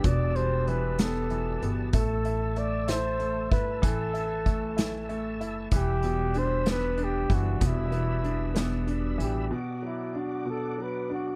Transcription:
<<
  \new Staff \with { instrumentName = "Tonewheel organ" } { \time 6/8 \key e \minor \tempo 4. = 63 <g' d'' a'' e'''>2. | <a' e'' a'' e'''>2.~ | <a' e'' a'' e'''>2. | <g d'' b'' e'''>2.~ |
<g d'' b'' e'''>2. | <fis' d'' fis'' d'''>2. | }
  \new Staff \with { instrumentName = "Flugelhorn" } { \time 6/8 \key e \minor d''8 c''8 b'8 a'4 r8 | a'4 d''8 c''4 b'8 | a'2 r4 | g'4 c''8 b'8 g'8 fis'8 |
e'2 r8 g'8 | fis'8 e'8 fis'8 a'8 b'8 fis'8 | }
  \new Staff \with { instrumentName = "Upright piano" } { \time 6/8 \key e \minor <b, e b d'>8 g8 e8 b8 e8 b8 | a8 e'8 a8 e'8 a8 e'8 | e8 e'8 a8 e'8 a8 e'8 | e8 b,8 d'8 b8 d'8 e8 |
b,8 b8 d'8 b8 d'8 e8 | b,8 fis8 d'8 b,8 fis8 d'8 | }
  \new Staff \with { instrumentName = "Upright bass" } { \clef bass \time 6/8 \key e \minor e,,2~ e,,8 g,,8 | a,,2~ a,,8 g,,8 | a,,2~ a,,8 fis,,8 | e,,2~ e,,8 fis,,8 |
e,,2~ e,,8 a,,8 | r2. | }
  \new DrumStaff \with { instrumentName = "Drums" } \drummode { \time 6/8 <hh bd>8 hh8 hh8 <hh sn>8 hh8 hh8 | <hh bd>8 hh8 hh8 <hh sn>8 hh8 <hh bd>8 | <hh bd>8 hh8 <hh bd>8 <hh sn>8 hh8 hh8 | <hh bd>8 hh8 hh8 <hh sn>8 hh8 <hh bd>8 |
<hh bd>8 hh8 hh8 <hh sn>8 hh8 hh8 | r4. r4. | }
>>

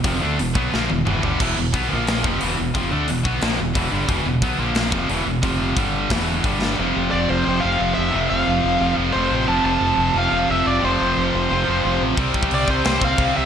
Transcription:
<<
  \new Staff \with { instrumentName = "Lead electric guitar" } { \time 4/4 \key f \lydian \tempo 4 = 178 r1 | r1 | r1 | r1 |
r1 | r4 d''8 c''8 c''8 f''4 e''8~ | e''8 f''2 r8 c''4 | a''8 a''4. f''4 e''8 d''8 |
c''2.~ c''8 r8 | r4 d''8 c''8 c''8 f''4 e''8 | }
  \new Staff \with { instrumentName = "Distorted electric guitar" } { \clef bass \time 4/4 \key f \lydian <f, c f>8 <d a d'>8 <e, b,>8 <b, fis b>8 <ais, f ais>8 <e, b,>8 <e, b, e>8 <g, d g>8 | <e, b, e>8 <e, b,>8 <b, fis b>8 <ais, eis ais>4 <f, c f>8 <e, b, e>8 <e, b,>8 | <f, c f>8 <d a d'>8 <e, b,>8 <b, fis b>8 <ais, f ais>8 <e, b,>8 <e, b, e>8 <g, d g>8 | <e, b, e>8 <e, b,>8 <b, fis b>8 <ais, eis ais>4 <f, c f>8 <e, b, e>8 <e, b,>8 |
<f, c f>4 <g, d g>4 <e, b, e>4 <g, d g>4 | <f, c f>2 <f, c f>2 | <f, c f>2 <f, c f>2 | <f, c f>2 <f, c f>2 |
<f, c f>2 <f, c f>2 | <c g c'>2 <c g c'>2 | }
  \new Staff \with { instrumentName = "Distorted electric guitar" } { \clef bass \time 4/4 \key f \lydian <f, c f>8 <d a d'>8 <e, b,>8 <b, fis b>8 <ais, f ais>8 <e, b,>8 <e, b, e>8 <g, d g>8 | <e, b, e>8 <e, b,>8 <b, fis b>8 <ais, eis ais>4 <f, c f>8 <e, b, e>8 <e, b,>8 | <f, c f>8 <d a d'>8 <e, b,>8 <b, fis b>8 <ais, f ais>8 <e, b,>8 <e, b, e>8 <g, d g>8 | <e, b, e>8 <e, b,>8 <b, fis b>8 <ais, eis ais>4 <f, c f>8 <e, b, e>8 <e, b,>8 |
<f, c f>4 <g, d g>4 <e, b, e>4 <g, d g>4 | <f, c f>2~ <f, c f>8 <f, c f>8 <f, c f>4 | <f, c f>2~ <f, c f>8 <f, c f>8 <f, c f>4 | <f, c f>2~ <f, c f>8 <f, c f>8 <f, c f>4 |
<f, c f>2~ <f, c f>8 <f, c f>8 <f, c f>4 | <c g c'>2~ <c g c'>8 <c g c'>8 <c g c'>4 | }
  \new Staff \with { instrumentName = "Fingered electric bass" } { \clef bass \time 4/4 \key f \lydian f,,8 d,8 e,,8 b,,8 ais,,8 e,,8 e,,8 g,,8 | e,,8 e,,8 b,,8 ais,,4 f,,8 e,,8 e,,8 | f,,8 d,8 e,,8 b,,8 ais,,8 e,,8 e,,8 g,,8 | e,,8 e,,8 b,,8 ais,,4 f,,8 e,,8 e,,8 |
f,,4 g,,4 e,,4 g,,4 | f,,8 f,,8 f,,8 f,,8 f,,8 f,,8 f,,8 f,,8 | f,,8 f,,8 f,,8 f,,8 f,,8 f,,8 f,,8 a,,8 | f,,8 f,,8 f,,8 f,,8 f,,8 f,,8 f,,8 f,,8 |
f,,8 f,,8 f,,8 f,,8 f,,8 f,,8 f,,8 a,,8 | c,8 c,8 c,8 c,8 c,8 c,8 c,8 c,8 | }
  \new DrumStaff \with { instrumentName = "Drums" } \drummode { \time 4/4 <hho bd>4 hho8 bd8 sn8 tommh8 toml8 tomfh8 | <cymc bd>4 <hho bd>4 <hho sn>8 bd8 hho4 | <hho bd>4 hho8 bd8 <hho sn>4 <hho bd>4 | <hho bd>4 <hho bd>4 <hho sn>8 bd8 hho4 |
<hho bd>4 <hho bd>4 <hho bd sn>4 <hho bd>8 sn8 | r4 r4 r4 r4 | r4 r4 r4 r4 | r4 r4 r4 r4 |
r4 r4 r4 r4 | <cymc bd>8 bd16 bd16 cymc8 bd8 <cymc sn>8 bd8 <cymc bd>4 | }
>>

